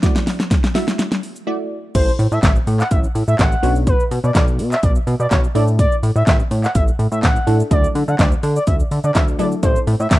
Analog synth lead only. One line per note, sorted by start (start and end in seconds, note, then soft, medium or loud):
1.95 2.12 C5 loud
2.32 2.40 E5 medium
2.43 2.52 E5 medium
2.80 2.88 F#5 medium
2.91 3.00 E5 medium
3.28 3.36 E5 medium
3.39 3.74 F#5 medium
3.87 4.04 B4 loud
4.24 4.32 D5 medium
4.35 4.44 D5 medium
4.72 4.80 E5 medium
4.83 4.92 D5 medium
5.20 5.28 D5 medium
5.31 5.40 C#5 medium
5.55 5.64 D5 medium
5.79 5.96 D5 loud
6.16 6.24 E5 medium
6.27 6.36 E5 medium
6.64 6.71 F#5 medium
6.75 6.84 E5 medium
7.12 7.19 E5 medium
7.23 7.57 F#5 medium
7.71 7.88 D5 loud
8.08 8.16 F#5 medium
8.19 8.28 D5 medium
8.56 8.64 D5 medium
8.67 8.76 E5 medium
9.04 9.12 D5 medium
9.15 9.24 E5 medium
9.39 9.48 D5 medium
9.63 9.80 C5 loud
10.00 10.07 E5 medium
10.11 10.19 E5 medium